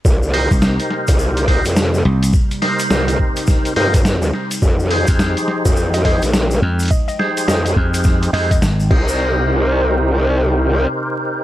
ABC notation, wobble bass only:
X:1
M:4/4
L:1/16
Q:"Swing 16ths" 1/4=105
K:Cm
V:1 name="Wobble bass" clef=bass
C,,3 z4 C,,4 F,,3 z2 | z4 C,,2 z4 G,,4 z2 | F,,3 z4 F,,4 B,,,3 z2 | z4 F,,2 z8 C,,2- |
C,,12 z4 |]